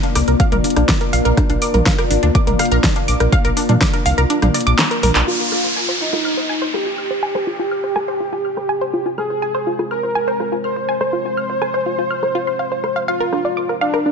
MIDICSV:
0, 0, Header, 1, 7, 480
1, 0, Start_track
1, 0, Tempo, 487805
1, 1353, Time_signature, 4, 2, 24, 8
1, 13893, End_track
2, 0, Start_track
2, 0, Title_t, "Synth arpeggio sound"
2, 0, Program_c, 0, 84
2, 33, Note_on_c, 0, 62, 77
2, 81, Note_off_c, 0, 62, 0
2, 153, Note_on_c, 0, 86, 77
2, 233, Note_off_c, 0, 86, 0
2, 273, Note_on_c, 0, 70, 76
2, 387, Note_off_c, 0, 70, 0
2, 391, Note_on_c, 0, 77, 100
2, 473, Note_off_c, 0, 77, 0
2, 513, Note_on_c, 0, 70, 101
2, 561, Note_off_c, 0, 70, 0
2, 632, Note_on_c, 0, 62, 76
2, 713, Note_off_c, 0, 62, 0
2, 753, Note_on_c, 0, 62, 79
2, 801, Note_off_c, 0, 62, 0
2, 872, Note_on_c, 0, 86, 82
2, 953, Note_off_c, 0, 86, 0
2, 993, Note_on_c, 0, 70, 75
2, 1107, Note_off_c, 0, 70, 0
2, 1111, Note_on_c, 0, 77, 103
2, 1193, Note_off_c, 0, 77, 0
2, 1231, Note_on_c, 0, 70, 102
2, 1280, Note_off_c, 0, 70, 0
2, 1351, Note_on_c, 0, 62, 83
2, 1433, Note_off_c, 0, 62, 0
2, 1473, Note_on_c, 0, 62, 75
2, 1521, Note_off_c, 0, 62, 0
2, 1593, Note_on_c, 0, 86, 80
2, 1673, Note_off_c, 0, 86, 0
2, 1713, Note_on_c, 0, 70, 74
2, 1826, Note_off_c, 0, 70, 0
2, 1832, Note_on_c, 0, 77, 100
2, 1913, Note_off_c, 0, 77, 0
2, 1952, Note_on_c, 0, 70, 101
2, 2001, Note_off_c, 0, 70, 0
2, 2071, Note_on_c, 0, 62, 74
2, 2153, Note_off_c, 0, 62, 0
2, 2192, Note_on_c, 0, 62, 78
2, 2241, Note_off_c, 0, 62, 0
2, 2312, Note_on_c, 0, 86, 85
2, 2393, Note_off_c, 0, 86, 0
2, 2432, Note_on_c, 0, 70, 75
2, 2546, Note_off_c, 0, 70, 0
2, 2552, Note_on_c, 0, 77, 101
2, 2633, Note_off_c, 0, 77, 0
2, 2673, Note_on_c, 0, 70, 103
2, 2721, Note_off_c, 0, 70, 0
2, 2793, Note_on_c, 0, 62, 82
2, 2873, Note_off_c, 0, 62, 0
2, 2913, Note_on_c, 0, 62, 74
2, 2961, Note_off_c, 0, 62, 0
2, 3032, Note_on_c, 0, 86, 78
2, 3113, Note_off_c, 0, 86, 0
2, 3152, Note_on_c, 0, 70, 76
2, 3266, Note_off_c, 0, 70, 0
2, 3272, Note_on_c, 0, 77, 106
2, 3353, Note_off_c, 0, 77, 0
2, 3392, Note_on_c, 0, 70, 103
2, 3440, Note_off_c, 0, 70, 0
2, 3511, Note_on_c, 0, 62, 78
2, 3592, Note_off_c, 0, 62, 0
2, 3632, Note_on_c, 0, 62, 77
2, 3680, Note_off_c, 0, 62, 0
2, 3751, Note_on_c, 0, 86, 83
2, 3832, Note_off_c, 0, 86, 0
2, 3872, Note_on_c, 0, 70, 79
2, 3986, Note_off_c, 0, 70, 0
2, 3991, Note_on_c, 0, 77, 101
2, 4073, Note_off_c, 0, 77, 0
2, 4111, Note_on_c, 0, 70, 102
2, 4160, Note_off_c, 0, 70, 0
2, 4231, Note_on_c, 0, 62, 84
2, 4313, Note_off_c, 0, 62, 0
2, 4352, Note_on_c, 0, 62, 77
2, 4401, Note_off_c, 0, 62, 0
2, 4471, Note_on_c, 0, 74, 77
2, 4520, Note_off_c, 0, 74, 0
2, 4592, Note_on_c, 0, 86, 104
2, 4706, Note_off_c, 0, 86, 0
2, 4712, Note_on_c, 0, 82, 84
2, 4793, Note_off_c, 0, 82, 0
2, 4832, Note_on_c, 0, 70, 76
2, 4912, Note_off_c, 0, 70, 0
2, 4952, Note_on_c, 0, 70, 98
2, 5033, Note_off_c, 0, 70, 0
2, 5072, Note_on_c, 0, 74, 101
2, 5153, Note_off_c, 0, 74, 0
2, 5192, Note_on_c, 0, 65, 80
2, 5273, Note_off_c, 0, 65, 0
2, 5312, Note_on_c, 0, 65, 73
2, 5360, Note_off_c, 0, 65, 0
2, 5431, Note_on_c, 0, 89, 74
2, 5513, Note_off_c, 0, 89, 0
2, 5552, Note_on_c, 0, 72, 74
2, 5666, Note_off_c, 0, 72, 0
2, 5671, Note_on_c, 0, 80, 96
2, 5753, Note_off_c, 0, 80, 0
2, 5792, Note_on_c, 0, 72, 98
2, 5840, Note_off_c, 0, 72, 0
2, 5911, Note_on_c, 0, 65, 72
2, 5992, Note_off_c, 0, 65, 0
2, 6032, Note_on_c, 0, 65, 75
2, 6080, Note_off_c, 0, 65, 0
2, 6151, Note_on_c, 0, 89, 78
2, 6232, Note_off_c, 0, 89, 0
2, 6272, Note_on_c, 0, 72, 76
2, 6386, Note_off_c, 0, 72, 0
2, 6390, Note_on_c, 0, 80, 96
2, 6472, Note_off_c, 0, 80, 0
2, 6511, Note_on_c, 0, 72, 100
2, 6560, Note_off_c, 0, 72, 0
2, 6631, Note_on_c, 0, 65, 80
2, 6712, Note_off_c, 0, 65, 0
2, 6751, Note_on_c, 0, 65, 72
2, 6800, Note_off_c, 0, 65, 0
2, 6871, Note_on_c, 0, 89, 74
2, 6952, Note_off_c, 0, 89, 0
2, 6992, Note_on_c, 0, 72, 71
2, 7106, Note_off_c, 0, 72, 0
2, 7111, Note_on_c, 0, 80, 98
2, 7193, Note_off_c, 0, 80, 0
2, 7232, Note_on_c, 0, 72, 93
2, 7280, Note_off_c, 0, 72, 0
2, 7351, Note_on_c, 0, 65, 75
2, 7433, Note_off_c, 0, 65, 0
2, 7472, Note_on_c, 0, 65, 75
2, 7521, Note_off_c, 0, 65, 0
2, 7591, Note_on_c, 0, 89, 80
2, 7673, Note_off_c, 0, 89, 0
2, 7712, Note_on_c, 0, 72, 72
2, 7826, Note_off_c, 0, 72, 0
2, 7830, Note_on_c, 0, 80, 97
2, 7912, Note_off_c, 0, 80, 0
2, 7952, Note_on_c, 0, 72, 98
2, 8000, Note_off_c, 0, 72, 0
2, 8071, Note_on_c, 0, 65, 79
2, 8153, Note_off_c, 0, 65, 0
2, 8192, Note_on_c, 0, 65, 74
2, 8240, Note_off_c, 0, 65, 0
2, 8312, Note_on_c, 0, 89, 76
2, 8393, Note_off_c, 0, 89, 0
2, 8432, Note_on_c, 0, 72, 75
2, 8546, Note_off_c, 0, 72, 0
2, 8551, Note_on_c, 0, 80, 97
2, 8633, Note_off_c, 0, 80, 0
2, 8673, Note_on_c, 0, 72, 96
2, 8721, Note_off_c, 0, 72, 0
2, 8792, Note_on_c, 0, 65, 73
2, 8873, Note_off_c, 0, 65, 0
2, 8913, Note_on_c, 0, 65, 72
2, 8961, Note_off_c, 0, 65, 0
2, 9032, Note_on_c, 0, 89, 82
2, 9113, Note_off_c, 0, 89, 0
2, 9153, Note_on_c, 0, 72, 70
2, 9266, Note_off_c, 0, 72, 0
2, 9272, Note_on_c, 0, 80, 99
2, 9353, Note_off_c, 0, 80, 0
2, 9392, Note_on_c, 0, 72, 98
2, 9441, Note_off_c, 0, 72, 0
2, 9513, Note_on_c, 0, 65, 81
2, 9593, Note_off_c, 0, 65, 0
2, 9633, Note_on_c, 0, 65, 74
2, 9681, Note_off_c, 0, 65, 0
2, 9751, Note_on_c, 0, 89, 74
2, 9833, Note_off_c, 0, 89, 0
2, 9872, Note_on_c, 0, 72, 76
2, 9986, Note_off_c, 0, 72, 0
2, 9991, Note_on_c, 0, 80, 98
2, 10073, Note_off_c, 0, 80, 0
2, 10112, Note_on_c, 0, 72, 98
2, 10160, Note_off_c, 0, 72, 0
2, 10232, Note_on_c, 0, 65, 72
2, 10313, Note_off_c, 0, 65, 0
2, 10352, Note_on_c, 0, 65, 73
2, 10401, Note_off_c, 0, 65, 0
2, 10471, Note_on_c, 0, 89, 79
2, 10553, Note_off_c, 0, 89, 0
2, 10592, Note_on_c, 0, 72, 75
2, 10706, Note_off_c, 0, 72, 0
2, 10712, Note_on_c, 0, 80, 97
2, 10793, Note_off_c, 0, 80, 0
2, 10832, Note_on_c, 0, 72, 100
2, 10880, Note_off_c, 0, 72, 0
2, 10951, Note_on_c, 0, 65, 80
2, 11033, Note_off_c, 0, 65, 0
2, 11072, Note_on_c, 0, 65, 70
2, 11121, Note_off_c, 0, 65, 0
2, 11192, Note_on_c, 0, 89, 77
2, 11273, Note_off_c, 0, 89, 0
2, 11312, Note_on_c, 0, 72, 73
2, 11426, Note_off_c, 0, 72, 0
2, 11431, Note_on_c, 0, 80, 99
2, 11512, Note_off_c, 0, 80, 0
2, 11552, Note_on_c, 0, 72, 98
2, 11601, Note_off_c, 0, 72, 0
2, 11671, Note_on_c, 0, 65, 72
2, 11753, Note_off_c, 0, 65, 0
2, 11793, Note_on_c, 0, 65, 75
2, 11841, Note_off_c, 0, 65, 0
2, 11912, Note_on_c, 0, 89, 81
2, 11993, Note_off_c, 0, 89, 0
2, 12033, Note_on_c, 0, 72, 76
2, 12147, Note_off_c, 0, 72, 0
2, 12152, Note_on_c, 0, 65, 98
2, 12233, Note_off_c, 0, 65, 0
2, 12273, Note_on_c, 0, 84, 74
2, 12387, Note_off_c, 0, 84, 0
2, 12391, Note_on_c, 0, 77, 80
2, 12507, Note_off_c, 0, 77, 0
2, 12513, Note_on_c, 0, 72, 71
2, 12593, Note_off_c, 0, 72, 0
2, 12631, Note_on_c, 0, 84, 73
2, 12713, Note_off_c, 0, 84, 0
2, 12753, Note_on_c, 0, 77, 94
2, 12801, Note_off_c, 0, 77, 0
2, 12872, Note_on_c, 0, 77, 99
2, 12953, Note_off_c, 0, 77, 0
2, 12993, Note_on_c, 0, 70, 97
2, 13041, Note_off_c, 0, 70, 0
2, 13113, Note_on_c, 0, 62, 74
2, 13193, Note_off_c, 0, 62, 0
2, 13234, Note_on_c, 0, 74, 72
2, 13313, Note_off_c, 0, 74, 0
2, 13353, Note_on_c, 0, 86, 78
2, 13433, Note_off_c, 0, 86, 0
2, 13474, Note_on_c, 0, 70, 74
2, 13587, Note_off_c, 0, 70, 0
2, 13592, Note_on_c, 0, 77, 100
2, 13673, Note_off_c, 0, 77, 0
2, 13713, Note_on_c, 0, 70, 99
2, 13761, Note_off_c, 0, 70, 0
2, 13834, Note_on_c, 0, 62, 79
2, 13893, Note_off_c, 0, 62, 0
2, 13893, End_track
3, 0, Start_track
3, 0, Title_t, "Supersaw synth"
3, 0, Program_c, 1, 81
3, 5192, Note_on_c, 1, 65, 102
3, 5817, Note_off_c, 1, 65, 0
3, 5911, Note_on_c, 1, 63, 93
3, 6537, Note_off_c, 1, 63, 0
3, 6630, Note_on_c, 1, 67, 103
3, 8936, Note_off_c, 1, 67, 0
3, 9032, Note_on_c, 1, 68, 102
3, 9657, Note_off_c, 1, 68, 0
3, 9750, Note_on_c, 1, 70, 94
3, 10376, Note_off_c, 1, 70, 0
3, 10473, Note_on_c, 1, 72, 105
3, 12777, Note_off_c, 1, 72, 0
3, 12874, Note_on_c, 1, 65, 101
3, 13498, Note_off_c, 1, 65, 0
3, 13591, Note_on_c, 1, 62, 97
3, 13893, Note_off_c, 1, 62, 0
3, 13893, End_track
4, 0, Start_track
4, 0, Title_t, "Ambient pad"
4, 0, Program_c, 2, 92
4, 0, Note_on_c, 2, 58, 81
4, 0, Note_on_c, 2, 62, 72
4, 0, Note_on_c, 2, 65, 74
4, 0, Note_on_c, 2, 74, 88
4, 5154, Note_off_c, 2, 58, 0
4, 5154, Note_off_c, 2, 62, 0
4, 5154, Note_off_c, 2, 65, 0
4, 5154, Note_off_c, 2, 74, 0
4, 5193, Note_on_c, 2, 60, 68
4, 5193, Note_on_c, 2, 65, 69
4, 5194, Note_on_c, 2, 72, 84
4, 5195, Note_on_c, 2, 56, 75
4, 12834, Note_off_c, 2, 56, 0
4, 12834, Note_off_c, 2, 60, 0
4, 12834, Note_off_c, 2, 72, 0
4, 12872, Note_on_c, 2, 58, 78
4, 12872, Note_on_c, 2, 74, 84
4, 12873, Note_on_c, 2, 62, 70
4, 13893, Note_off_c, 2, 58, 0
4, 13893, Note_off_c, 2, 62, 0
4, 13893, Note_off_c, 2, 65, 0
4, 13893, Note_off_c, 2, 74, 0
4, 13893, End_track
5, 0, Start_track
5, 0, Title_t, "Analog synth bass"
5, 0, Program_c, 3, 38
5, 152, Note_on_c, 3, 36, 93
5, 226, Note_off_c, 3, 36, 0
5, 273, Note_on_c, 3, 36, 82
5, 346, Note_off_c, 3, 36, 0
5, 513, Note_on_c, 3, 34, 76
5, 586, Note_off_c, 3, 34, 0
5, 755, Note_on_c, 3, 34, 82
5, 826, Note_off_c, 3, 34, 0
5, 1112, Note_on_c, 3, 34, 93
5, 1185, Note_off_c, 3, 34, 0
5, 1233, Note_on_c, 3, 34, 85
5, 1305, Note_off_c, 3, 34, 0
5, 1473, Note_on_c, 3, 34, 80
5, 1545, Note_off_c, 3, 34, 0
5, 1712, Note_on_c, 3, 34, 88
5, 1785, Note_off_c, 3, 34, 0
5, 2071, Note_on_c, 3, 32, 92
5, 2145, Note_off_c, 3, 32, 0
5, 2193, Note_on_c, 3, 38, 84
5, 2266, Note_off_c, 3, 38, 0
5, 2433, Note_on_c, 3, 34, 77
5, 2506, Note_off_c, 3, 34, 0
5, 2672, Note_on_c, 3, 34, 80
5, 2745, Note_off_c, 3, 34, 0
5, 3033, Note_on_c, 3, 34, 95
5, 3106, Note_off_c, 3, 34, 0
5, 3153, Note_on_c, 3, 34, 85
5, 3225, Note_off_c, 3, 34, 0
5, 3393, Note_on_c, 3, 34, 76
5, 3466, Note_off_c, 3, 34, 0
5, 3633, Note_on_c, 3, 46, 85
5, 3705, Note_off_c, 3, 46, 0
5, 3991, Note_on_c, 3, 36, 95
5, 4065, Note_off_c, 3, 36, 0
5, 4112, Note_on_c, 3, 36, 82
5, 4185, Note_off_c, 3, 36, 0
5, 4352, Note_on_c, 3, 34, 77
5, 4425, Note_off_c, 3, 34, 0
5, 4592, Note_on_c, 3, 34, 82
5, 4665, Note_off_c, 3, 34, 0
5, 4951, Note_on_c, 3, 34, 96
5, 5025, Note_off_c, 3, 34, 0
5, 5072, Note_on_c, 3, 34, 84
5, 5145, Note_off_c, 3, 34, 0
5, 13893, End_track
6, 0, Start_track
6, 0, Title_t, "Downlifter"
6, 0, Program_c, 4, 103
6, 5191, Note_on_c, 4, 60, 69
6, 9032, Note_off_c, 4, 60, 0
6, 13893, End_track
7, 0, Start_track
7, 0, Title_t, "Drums"
7, 33, Note_on_c, 9, 42, 44
7, 132, Note_off_c, 9, 42, 0
7, 152, Note_on_c, 9, 37, 55
7, 152, Note_on_c, 9, 46, 106
7, 250, Note_off_c, 9, 37, 0
7, 250, Note_off_c, 9, 46, 0
7, 273, Note_on_c, 9, 42, 44
7, 371, Note_off_c, 9, 42, 0
7, 392, Note_on_c, 9, 42, 69
7, 393, Note_on_c, 9, 36, 115
7, 490, Note_off_c, 9, 42, 0
7, 491, Note_off_c, 9, 36, 0
7, 512, Note_on_c, 9, 42, 43
7, 512, Note_on_c, 9, 45, 89
7, 611, Note_off_c, 9, 42, 0
7, 611, Note_off_c, 9, 45, 0
7, 632, Note_on_c, 9, 46, 98
7, 692, Note_on_c, 9, 42, 51
7, 730, Note_off_c, 9, 46, 0
7, 753, Note_off_c, 9, 42, 0
7, 753, Note_on_c, 9, 37, 52
7, 753, Note_on_c, 9, 42, 42
7, 851, Note_off_c, 9, 37, 0
7, 851, Note_off_c, 9, 42, 0
7, 872, Note_on_c, 9, 38, 97
7, 872, Note_on_c, 9, 42, 66
7, 873, Note_on_c, 9, 36, 111
7, 971, Note_off_c, 9, 36, 0
7, 971, Note_off_c, 9, 38, 0
7, 971, Note_off_c, 9, 42, 0
7, 993, Note_on_c, 9, 42, 45
7, 1092, Note_off_c, 9, 42, 0
7, 1113, Note_on_c, 9, 46, 102
7, 1211, Note_off_c, 9, 46, 0
7, 1234, Note_on_c, 9, 42, 43
7, 1332, Note_off_c, 9, 42, 0
7, 1352, Note_on_c, 9, 37, 52
7, 1352, Note_on_c, 9, 42, 68
7, 1353, Note_on_c, 9, 36, 111
7, 1451, Note_off_c, 9, 36, 0
7, 1451, Note_off_c, 9, 37, 0
7, 1451, Note_off_c, 9, 42, 0
7, 1472, Note_on_c, 9, 42, 45
7, 1571, Note_off_c, 9, 42, 0
7, 1592, Note_on_c, 9, 46, 100
7, 1690, Note_off_c, 9, 46, 0
7, 1713, Note_on_c, 9, 42, 46
7, 1713, Note_on_c, 9, 45, 83
7, 1811, Note_off_c, 9, 42, 0
7, 1811, Note_off_c, 9, 45, 0
7, 1832, Note_on_c, 9, 36, 113
7, 1832, Note_on_c, 9, 38, 102
7, 1832, Note_on_c, 9, 42, 70
7, 1930, Note_off_c, 9, 38, 0
7, 1930, Note_off_c, 9, 42, 0
7, 1931, Note_off_c, 9, 36, 0
7, 1953, Note_on_c, 9, 37, 51
7, 1953, Note_on_c, 9, 42, 45
7, 2051, Note_off_c, 9, 37, 0
7, 2051, Note_off_c, 9, 42, 0
7, 2072, Note_on_c, 9, 46, 105
7, 2170, Note_off_c, 9, 46, 0
7, 2193, Note_on_c, 9, 42, 46
7, 2291, Note_off_c, 9, 42, 0
7, 2312, Note_on_c, 9, 36, 112
7, 2312, Note_on_c, 9, 42, 68
7, 2411, Note_off_c, 9, 36, 0
7, 2411, Note_off_c, 9, 42, 0
7, 2433, Note_on_c, 9, 42, 48
7, 2433, Note_on_c, 9, 45, 86
7, 2531, Note_off_c, 9, 42, 0
7, 2531, Note_off_c, 9, 45, 0
7, 2552, Note_on_c, 9, 37, 49
7, 2552, Note_on_c, 9, 46, 96
7, 2612, Note_on_c, 9, 42, 54
7, 2650, Note_off_c, 9, 37, 0
7, 2650, Note_off_c, 9, 46, 0
7, 2672, Note_off_c, 9, 42, 0
7, 2672, Note_on_c, 9, 42, 46
7, 2771, Note_off_c, 9, 42, 0
7, 2792, Note_on_c, 9, 36, 109
7, 2792, Note_on_c, 9, 38, 101
7, 2792, Note_on_c, 9, 42, 68
7, 2890, Note_off_c, 9, 38, 0
7, 2890, Note_off_c, 9, 42, 0
7, 2891, Note_off_c, 9, 36, 0
7, 2912, Note_on_c, 9, 42, 46
7, 3011, Note_off_c, 9, 42, 0
7, 3032, Note_on_c, 9, 46, 96
7, 3130, Note_off_c, 9, 46, 0
7, 3152, Note_on_c, 9, 37, 51
7, 3152, Note_on_c, 9, 42, 44
7, 3250, Note_off_c, 9, 37, 0
7, 3250, Note_off_c, 9, 42, 0
7, 3272, Note_on_c, 9, 36, 116
7, 3272, Note_on_c, 9, 42, 69
7, 3370, Note_off_c, 9, 36, 0
7, 3370, Note_off_c, 9, 42, 0
7, 3392, Note_on_c, 9, 42, 47
7, 3490, Note_off_c, 9, 42, 0
7, 3511, Note_on_c, 9, 46, 102
7, 3610, Note_off_c, 9, 46, 0
7, 3632, Note_on_c, 9, 42, 46
7, 3632, Note_on_c, 9, 45, 80
7, 3730, Note_off_c, 9, 42, 0
7, 3730, Note_off_c, 9, 45, 0
7, 3752, Note_on_c, 9, 36, 117
7, 3752, Note_on_c, 9, 37, 50
7, 3752, Note_on_c, 9, 38, 104
7, 3752, Note_on_c, 9, 42, 71
7, 3850, Note_off_c, 9, 36, 0
7, 3850, Note_off_c, 9, 37, 0
7, 3850, Note_off_c, 9, 38, 0
7, 3850, Note_off_c, 9, 42, 0
7, 3873, Note_on_c, 9, 42, 48
7, 3971, Note_off_c, 9, 42, 0
7, 3992, Note_on_c, 9, 46, 106
7, 4090, Note_off_c, 9, 46, 0
7, 4113, Note_on_c, 9, 42, 47
7, 4211, Note_off_c, 9, 42, 0
7, 4232, Note_on_c, 9, 42, 72
7, 4330, Note_off_c, 9, 42, 0
7, 4353, Note_on_c, 9, 37, 50
7, 4353, Note_on_c, 9, 42, 49
7, 4353, Note_on_c, 9, 45, 80
7, 4451, Note_off_c, 9, 37, 0
7, 4451, Note_off_c, 9, 42, 0
7, 4451, Note_off_c, 9, 45, 0
7, 4472, Note_on_c, 9, 46, 99
7, 4532, Note_on_c, 9, 42, 55
7, 4570, Note_off_c, 9, 46, 0
7, 4593, Note_off_c, 9, 42, 0
7, 4593, Note_on_c, 9, 42, 46
7, 4691, Note_off_c, 9, 42, 0
7, 4712, Note_on_c, 9, 38, 108
7, 4712, Note_on_c, 9, 39, 108
7, 4712, Note_on_c, 9, 42, 69
7, 4810, Note_off_c, 9, 38, 0
7, 4810, Note_off_c, 9, 39, 0
7, 4810, Note_off_c, 9, 42, 0
7, 4832, Note_on_c, 9, 42, 47
7, 4931, Note_off_c, 9, 42, 0
7, 4951, Note_on_c, 9, 45, 81
7, 4951, Note_on_c, 9, 46, 100
7, 5050, Note_off_c, 9, 45, 0
7, 5050, Note_off_c, 9, 46, 0
7, 5072, Note_on_c, 9, 39, 81
7, 5072, Note_on_c, 9, 42, 46
7, 5171, Note_off_c, 9, 39, 0
7, 5171, Note_off_c, 9, 42, 0
7, 5431, Note_on_c, 9, 37, 46
7, 5530, Note_off_c, 9, 37, 0
7, 6032, Note_on_c, 9, 37, 46
7, 6130, Note_off_c, 9, 37, 0
7, 6632, Note_on_c, 9, 37, 46
7, 6730, Note_off_c, 9, 37, 0
7, 7232, Note_on_c, 9, 37, 49
7, 7331, Note_off_c, 9, 37, 0
7, 7832, Note_on_c, 9, 37, 50
7, 7930, Note_off_c, 9, 37, 0
7, 8433, Note_on_c, 9, 37, 47
7, 8532, Note_off_c, 9, 37, 0
7, 9033, Note_on_c, 9, 37, 51
7, 9131, Note_off_c, 9, 37, 0
7, 9633, Note_on_c, 9, 37, 51
7, 9731, Note_off_c, 9, 37, 0
7, 10233, Note_on_c, 9, 37, 48
7, 10331, Note_off_c, 9, 37, 0
7, 10832, Note_on_c, 9, 37, 48
7, 10931, Note_off_c, 9, 37, 0
7, 11431, Note_on_c, 9, 37, 49
7, 11529, Note_off_c, 9, 37, 0
7, 12032, Note_on_c, 9, 37, 52
7, 12131, Note_off_c, 9, 37, 0
7, 12632, Note_on_c, 9, 37, 50
7, 12730, Note_off_c, 9, 37, 0
7, 13112, Note_on_c, 9, 37, 51
7, 13210, Note_off_c, 9, 37, 0
7, 13713, Note_on_c, 9, 37, 51
7, 13811, Note_off_c, 9, 37, 0
7, 13893, End_track
0, 0, End_of_file